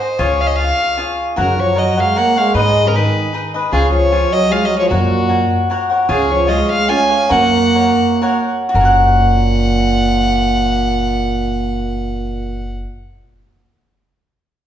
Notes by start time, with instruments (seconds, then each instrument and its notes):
Already playing: violin C5
0.01 cavaquinho G#4 C5 D#5
0.19 upright bass C#2, cavaquinho F4 G#4 C#5 F5, violin C#5
0.41 violin F5
0.47 violin D#5
0.55 cavaquinho F4 G#4, violin F5
0.60 cavaquinho C#5 F5
0.97 cavaquinho F4 G#4 C#5 F5
1.36 upright bass F#2, trombone C#3, cavaquinho F#4 A#4 C#5 F#5, violin A#4
1.59 trombone F3, violin C#5
1.75 trombone F#3, cavaquinho F#4 A#4 C#5 F#5, violin D#5
1.97 trombone G#3, cavaquinho A#4 C#5 F#5, violin F5
2.15 trombone A#3, cavaquinho F#4 A#4 C#5 F#5, violin F#5
2.36 trombone G#3, cavaquinho A#4 C#5 F#5, violin F5
2.54 upright bass G#2, trombone G#3, cavaquinho D#4 G#4 B4 D#5, violin D#5
2.87 trombone C#3, violin A#4
2.93 trombone D#3, cavaquinho D#4 G#4 B4 D#5, violin B4
3.33 cavaquinho D#4 G#4 B4 D#5
3.54 cavaquinho G#4 B4 D#5
3.71 upright bass C#2, trombone C#3, cavaquinho F4 G#4 C#5 F5, violin G#4
3.91 trombone F3, violin C#5
4.12 cavaquinho F4 G#4 C#5 F5
4.32 trombone F#3, violin D#5
4.50 trombone G#3, cavaquinho F4 G#4 C#5 F5, violin F5
4.65 trombone F#3, violin D#5
4.79 trombone F3, violin C#5
4.90 upright bass F#2, trombone A#2, cavaquinho F#4 A#4 C#5 F#5, violin F#4
5.28 cavaquinho F#4 A#4 C#5 F#5
5.70 cavaquinho F#4 A#4 C#5 F#5
5.90 cavaquinho A#4 C#5 F#5
6.09 upright bass C#2, cavaquinho F4 G#4 C#5 F5, violin G#4
6.13 trombone C#3
6.31 trombone F3, violin C#5
6.47 cavaquinho F4 G#4 C#5 F5, violin D#5
6.51 trombone G#3
6.72 trombone G#3, violin F5
6.89 trombone C#4, cavaquinho F4 G#4 C#5 F5, violin G#5
7.09 cavaquinho G#4 C#5 F5
7.29 upright bass F#2, trombone A#3, cavaquinho F#4 A#4 C#5 F#5, violin F#5
7.74 cavaquinho F#4 A#4 C#5 F#5
8.21 cavaquinho F#4 A#4 C#5 F#5
8.69 cavaquinho F#4
8.73 upright bass F#1, trombone A#2, cavaquinho A#4, violin F#5
8.81 cavaquinho C#5
8.85 cavaquinho F#5